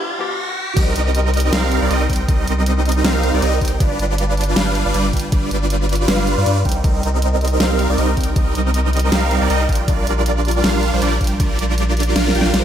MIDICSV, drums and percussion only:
0, 0, Header, 1, 2, 480
1, 0, Start_track
1, 0, Key_signature, -3, "minor"
1, 0, Tempo, 379747
1, 968, Time_signature, 4, 2, 24, 8
1, 15982, End_track
2, 0, Start_track
2, 0, Title_t, "Drums"
2, 968, Note_on_c, 9, 36, 117
2, 969, Note_on_c, 9, 42, 81
2, 969, Note_on_c, 9, 49, 102
2, 1095, Note_off_c, 9, 36, 0
2, 1096, Note_off_c, 9, 42, 0
2, 1096, Note_off_c, 9, 49, 0
2, 1209, Note_on_c, 9, 42, 70
2, 1336, Note_off_c, 9, 42, 0
2, 1449, Note_on_c, 9, 42, 83
2, 1576, Note_off_c, 9, 42, 0
2, 1689, Note_on_c, 9, 42, 51
2, 1734, Note_off_c, 9, 42, 0
2, 1734, Note_on_c, 9, 42, 69
2, 1770, Note_off_c, 9, 42, 0
2, 1770, Note_on_c, 9, 42, 82
2, 1896, Note_off_c, 9, 42, 0
2, 1930, Note_on_c, 9, 38, 120
2, 1930, Note_on_c, 9, 42, 82
2, 2056, Note_off_c, 9, 38, 0
2, 2056, Note_off_c, 9, 42, 0
2, 2169, Note_on_c, 9, 42, 67
2, 2295, Note_off_c, 9, 42, 0
2, 2410, Note_on_c, 9, 42, 81
2, 2536, Note_off_c, 9, 42, 0
2, 2648, Note_on_c, 9, 36, 64
2, 2650, Note_on_c, 9, 42, 53
2, 2693, Note_off_c, 9, 42, 0
2, 2693, Note_on_c, 9, 42, 67
2, 2728, Note_off_c, 9, 42, 0
2, 2728, Note_on_c, 9, 42, 85
2, 2775, Note_off_c, 9, 36, 0
2, 2855, Note_off_c, 9, 42, 0
2, 2888, Note_on_c, 9, 36, 120
2, 2889, Note_on_c, 9, 42, 82
2, 3014, Note_off_c, 9, 36, 0
2, 3015, Note_off_c, 9, 42, 0
2, 3128, Note_on_c, 9, 42, 69
2, 3255, Note_off_c, 9, 42, 0
2, 3367, Note_on_c, 9, 42, 83
2, 3494, Note_off_c, 9, 42, 0
2, 3609, Note_on_c, 9, 42, 51
2, 3653, Note_off_c, 9, 42, 0
2, 3653, Note_on_c, 9, 42, 67
2, 3688, Note_off_c, 9, 42, 0
2, 3688, Note_on_c, 9, 42, 83
2, 3814, Note_off_c, 9, 42, 0
2, 3849, Note_on_c, 9, 38, 124
2, 3849, Note_on_c, 9, 42, 84
2, 3976, Note_off_c, 9, 38, 0
2, 3976, Note_off_c, 9, 42, 0
2, 4088, Note_on_c, 9, 42, 71
2, 4214, Note_off_c, 9, 42, 0
2, 4328, Note_on_c, 9, 42, 80
2, 4454, Note_off_c, 9, 42, 0
2, 4568, Note_on_c, 9, 36, 66
2, 4569, Note_on_c, 9, 42, 53
2, 4612, Note_off_c, 9, 42, 0
2, 4612, Note_on_c, 9, 42, 68
2, 4648, Note_off_c, 9, 42, 0
2, 4648, Note_on_c, 9, 42, 84
2, 4694, Note_off_c, 9, 36, 0
2, 4775, Note_off_c, 9, 42, 0
2, 4808, Note_on_c, 9, 36, 120
2, 4808, Note_on_c, 9, 42, 82
2, 4934, Note_off_c, 9, 36, 0
2, 4935, Note_off_c, 9, 42, 0
2, 5049, Note_on_c, 9, 42, 70
2, 5176, Note_off_c, 9, 42, 0
2, 5288, Note_on_c, 9, 42, 84
2, 5414, Note_off_c, 9, 42, 0
2, 5529, Note_on_c, 9, 42, 51
2, 5572, Note_off_c, 9, 42, 0
2, 5572, Note_on_c, 9, 42, 64
2, 5607, Note_off_c, 9, 42, 0
2, 5607, Note_on_c, 9, 42, 81
2, 5734, Note_off_c, 9, 42, 0
2, 5767, Note_on_c, 9, 38, 124
2, 5767, Note_on_c, 9, 42, 80
2, 5894, Note_off_c, 9, 38, 0
2, 5894, Note_off_c, 9, 42, 0
2, 6008, Note_on_c, 9, 42, 68
2, 6134, Note_off_c, 9, 42, 0
2, 6248, Note_on_c, 9, 42, 81
2, 6374, Note_off_c, 9, 42, 0
2, 6488, Note_on_c, 9, 36, 65
2, 6488, Note_on_c, 9, 42, 51
2, 6531, Note_off_c, 9, 42, 0
2, 6531, Note_on_c, 9, 42, 66
2, 6567, Note_off_c, 9, 42, 0
2, 6567, Note_on_c, 9, 42, 84
2, 6615, Note_off_c, 9, 36, 0
2, 6693, Note_off_c, 9, 42, 0
2, 6727, Note_on_c, 9, 42, 79
2, 6728, Note_on_c, 9, 36, 122
2, 6854, Note_off_c, 9, 42, 0
2, 6855, Note_off_c, 9, 36, 0
2, 6968, Note_on_c, 9, 42, 66
2, 7094, Note_off_c, 9, 42, 0
2, 7208, Note_on_c, 9, 42, 82
2, 7334, Note_off_c, 9, 42, 0
2, 7448, Note_on_c, 9, 42, 48
2, 7492, Note_off_c, 9, 42, 0
2, 7492, Note_on_c, 9, 42, 64
2, 7527, Note_off_c, 9, 42, 0
2, 7527, Note_on_c, 9, 42, 78
2, 7653, Note_off_c, 9, 42, 0
2, 7688, Note_on_c, 9, 38, 124
2, 7688, Note_on_c, 9, 42, 79
2, 7814, Note_off_c, 9, 38, 0
2, 7814, Note_off_c, 9, 42, 0
2, 7928, Note_on_c, 9, 42, 65
2, 8054, Note_off_c, 9, 42, 0
2, 8168, Note_on_c, 9, 42, 75
2, 8295, Note_off_c, 9, 42, 0
2, 8408, Note_on_c, 9, 36, 67
2, 8409, Note_on_c, 9, 42, 48
2, 8454, Note_off_c, 9, 42, 0
2, 8454, Note_on_c, 9, 42, 64
2, 8489, Note_off_c, 9, 42, 0
2, 8489, Note_on_c, 9, 42, 82
2, 8535, Note_off_c, 9, 36, 0
2, 8615, Note_off_c, 9, 42, 0
2, 8648, Note_on_c, 9, 42, 75
2, 8649, Note_on_c, 9, 36, 117
2, 8775, Note_off_c, 9, 36, 0
2, 8775, Note_off_c, 9, 42, 0
2, 8889, Note_on_c, 9, 42, 62
2, 9015, Note_off_c, 9, 42, 0
2, 9129, Note_on_c, 9, 42, 75
2, 9255, Note_off_c, 9, 42, 0
2, 9368, Note_on_c, 9, 42, 48
2, 9413, Note_off_c, 9, 42, 0
2, 9413, Note_on_c, 9, 42, 61
2, 9449, Note_off_c, 9, 42, 0
2, 9449, Note_on_c, 9, 42, 75
2, 9576, Note_off_c, 9, 42, 0
2, 9609, Note_on_c, 9, 38, 116
2, 9609, Note_on_c, 9, 42, 75
2, 9735, Note_off_c, 9, 38, 0
2, 9735, Note_off_c, 9, 42, 0
2, 9848, Note_on_c, 9, 42, 60
2, 9975, Note_off_c, 9, 42, 0
2, 10089, Note_on_c, 9, 42, 72
2, 10216, Note_off_c, 9, 42, 0
2, 10328, Note_on_c, 9, 36, 66
2, 10328, Note_on_c, 9, 42, 48
2, 10373, Note_off_c, 9, 42, 0
2, 10373, Note_on_c, 9, 42, 61
2, 10409, Note_off_c, 9, 42, 0
2, 10409, Note_on_c, 9, 42, 76
2, 10455, Note_off_c, 9, 36, 0
2, 10536, Note_off_c, 9, 42, 0
2, 10568, Note_on_c, 9, 36, 113
2, 10569, Note_on_c, 9, 42, 75
2, 10694, Note_off_c, 9, 36, 0
2, 10696, Note_off_c, 9, 42, 0
2, 10809, Note_on_c, 9, 42, 64
2, 10936, Note_off_c, 9, 42, 0
2, 11049, Note_on_c, 9, 42, 77
2, 11176, Note_off_c, 9, 42, 0
2, 11290, Note_on_c, 9, 42, 47
2, 11333, Note_off_c, 9, 42, 0
2, 11333, Note_on_c, 9, 42, 63
2, 11369, Note_off_c, 9, 42, 0
2, 11369, Note_on_c, 9, 42, 77
2, 11496, Note_off_c, 9, 42, 0
2, 11529, Note_on_c, 9, 38, 114
2, 11529, Note_on_c, 9, 42, 75
2, 11655, Note_off_c, 9, 38, 0
2, 11655, Note_off_c, 9, 42, 0
2, 11769, Note_on_c, 9, 42, 62
2, 11895, Note_off_c, 9, 42, 0
2, 12009, Note_on_c, 9, 42, 74
2, 12135, Note_off_c, 9, 42, 0
2, 12248, Note_on_c, 9, 36, 63
2, 12249, Note_on_c, 9, 42, 48
2, 12293, Note_off_c, 9, 42, 0
2, 12293, Note_on_c, 9, 42, 60
2, 12329, Note_off_c, 9, 42, 0
2, 12329, Note_on_c, 9, 42, 76
2, 12375, Note_off_c, 9, 36, 0
2, 12456, Note_off_c, 9, 42, 0
2, 12488, Note_on_c, 9, 36, 114
2, 12489, Note_on_c, 9, 42, 78
2, 12615, Note_off_c, 9, 36, 0
2, 12615, Note_off_c, 9, 42, 0
2, 12729, Note_on_c, 9, 42, 65
2, 12855, Note_off_c, 9, 42, 0
2, 12969, Note_on_c, 9, 42, 81
2, 13095, Note_off_c, 9, 42, 0
2, 13209, Note_on_c, 9, 42, 48
2, 13252, Note_off_c, 9, 42, 0
2, 13252, Note_on_c, 9, 42, 61
2, 13288, Note_off_c, 9, 42, 0
2, 13288, Note_on_c, 9, 42, 79
2, 13415, Note_off_c, 9, 42, 0
2, 13448, Note_on_c, 9, 38, 114
2, 13448, Note_on_c, 9, 42, 77
2, 13574, Note_off_c, 9, 38, 0
2, 13574, Note_off_c, 9, 42, 0
2, 13688, Note_on_c, 9, 42, 63
2, 13814, Note_off_c, 9, 42, 0
2, 13927, Note_on_c, 9, 42, 77
2, 14053, Note_off_c, 9, 42, 0
2, 14167, Note_on_c, 9, 42, 48
2, 14168, Note_on_c, 9, 36, 60
2, 14212, Note_off_c, 9, 42, 0
2, 14212, Note_on_c, 9, 42, 64
2, 14248, Note_off_c, 9, 42, 0
2, 14248, Note_on_c, 9, 42, 78
2, 14295, Note_off_c, 9, 36, 0
2, 14375, Note_off_c, 9, 42, 0
2, 14408, Note_on_c, 9, 42, 81
2, 14409, Note_on_c, 9, 36, 112
2, 14534, Note_off_c, 9, 42, 0
2, 14535, Note_off_c, 9, 36, 0
2, 14649, Note_on_c, 9, 42, 67
2, 14775, Note_off_c, 9, 42, 0
2, 14888, Note_on_c, 9, 42, 81
2, 15015, Note_off_c, 9, 42, 0
2, 15128, Note_on_c, 9, 42, 48
2, 15171, Note_off_c, 9, 42, 0
2, 15171, Note_on_c, 9, 42, 65
2, 15207, Note_off_c, 9, 42, 0
2, 15207, Note_on_c, 9, 42, 83
2, 15333, Note_off_c, 9, 42, 0
2, 15368, Note_on_c, 9, 38, 70
2, 15368, Note_on_c, 9, 42, 80
2, 15494, Note_off_c, 9, 38, 0
2, 15494, Note_off_c, 9, 42, 0
2, 15528, Note_on_c, 9, 38, 72
2, 15609, Note_on_c, 9, 42, 65
2, 15655, Note_off_c, 9, 38, 0
2, 15687, Note_on_c, 9, 38, 79
2, 15735, Note_off_c, 9, 42, 0
2, 15814, Note_off_c, 9, 38, 0
2, 15848, Note_on_c, 9, 38, 88
2, 15848, Note_on_c, 9, 42, 79
2, 15974, Note_off_c, 9, 38, 0
2, 15974, Note_off_c, 9, 42, 0
2, 15982, End_track
0, 0, End_of_file